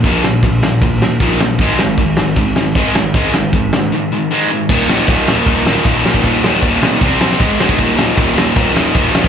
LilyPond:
<<
  \new Staff \with { instrumentName = "Distorted electric guitar" } { \clef bass \time 4/4 \key aes \lydian \tempo 4 = 155 <ees, bes, ees>8 <ees, bes,>8 <ees, bes,>8 <ees, bes,>8 <ees, bes,>8 <ees, bes,>8 <ees, bes, ees>8 <ees, bes,>8 | <aes, ees aes>8 <aes, ees>8 <aes, ees>8 <aes, ees>8 <aes, ees>8 <aes, ees>8 <aes, ees aes>8 <aes, ees>8 | <aes, ees aes>8 <aes, ees>8 <aes, ees>8 <aes, ees>8 <aes, ees>8 <aes, ees>8 <aes, ees aes>8 <aes, ees>8 | \key ees \major <ees, bes, ees>8 <ees, bes, ees>8 <ees, bes, ees>8 <ees, bes, ees>8 <ees, bes, ees>8 <ees, bes, ees>8 <ees, bes, ees>8 <ees, bes, ees>8 |
<ees, bes, ees>8 <ees, bes, ees>8 <ees, bes, ees>8 <ees, bes, ees>8 <c g c'>8 <c g c'>8 <aes, ees aes>8 <aes, ees aes>8 | <ees, bes, ees>8 <ees, bes, ees>8 <ees, bes, ees>8 <ees, bes, ees>8 <ees, bes, ees>8 <ees, bes, ees>8 <ees, bes, ees>8 <ees, bes, ees>8 | }
  \new Staff \with { instrumentName = "Distorted electric guitar" } { \clef bass \time 4/4 \key aes \lydian <ees, bes, ees>8 <ees, bes,>8 <ees, bes,>8 <ees, bes,>8 <ees, bes,>8 <ees, bes,>8 <ees, bes, ees>8 <ees, bes,>8 | <aes, ees aes>8 <aes, ees>8 <aes, ees>8 <aes, ees>8 <aes, ees>8 <aes, ees>8 <aes, ees aes>8 <aes, ees>8 | <aes, ees aes>8 <aes, ees>8 <aes, ees>8 <aes, ees>8 <aes, ees>8 <aes, ees>8 <aes, ees aes>8 <aes, ees>8 | \key ees \major <ees, bes, ees>8 <ees, bes, ees>8 <ees, bes, ees>8 <ees, bes, ees>8 <ees, bes, ees>8 <ees, bes, ees>8 <ees, bes, ees>8 <ees, bes, ees>8 |
<ees, bes, ees>8 <ees, bes, ees>8 <ees, bes, ees>8 <ees, bes, ees>8 <c g c'>8 <c g c'>8 <aes, ees aes>8 <aes, ees aes>8 | <ees, bes, ees>8 <ees, bes, ees>8 <ees, bes, ees>8 <ees, bes, ees>8 <ees, bes, ees>8 <ees, bes, ees>8 <ees, bes, ees>8 <ees, bes, ees>8 | }
  \new Staff \with { instrumentName = "Picked electric bass" } { \clef bass \time 4/4 \key aes \lydian bes,,8 bes,,8 bes,,8 bes,,8 bes,,8 bes,,8 bes,,8 bes,,8 | aes,,8 aes,,8 aes,,8 aes,,8 aes,,8 aes,,8 aes,,8 aes,,8 | aes,,8 aes,,8 aes,,8 d,8 r2 | \key ees \major ees,,8 ees,,8 ees,,8 ees,,8 ees,,8 ees,,8 ees,,8 bes,,8 |
ees,,8 ees,,8 ees,,8 ces,8 c,8 bes,,8 aes,,8 d,8 | ees,,8 ees,,8 ees,,8 ees,,8 ees,,8 ees,,8 ees,,8 bes,,8 | }
  \new DrumStaff \with { instrumentName = "Drums" } \drummode { \time 4/4 <bd cymr>8 sn8 <bd cymr>8 sn8 <bd cymr>8 sn8 <bd cymr>8 sn8 | <bd cymr>8 sn8 <bd cymr>8 sn8 <bd cymr>8 sn8 <bd cymr>8 sn8 | <bd cymr>8 sn8 <bd cymr>8 sn8 r4 r4 | <cymc bd>8 sn8 <bd cymr>8 sn8 <bd cymr>8 sn8 <bd cymr>8 sn16 bd16 |
<bd cymr>8 sn8 <bd cymr>8 sn8 <bd cymr>8 sn8 <bd cymr>8 sn16 bd16 | <bd cymr>8 sn8 <bd cymr>8 sn8 <bd cymr>8 sn8 <bd cymr>8 sn16 bd16 | }
>>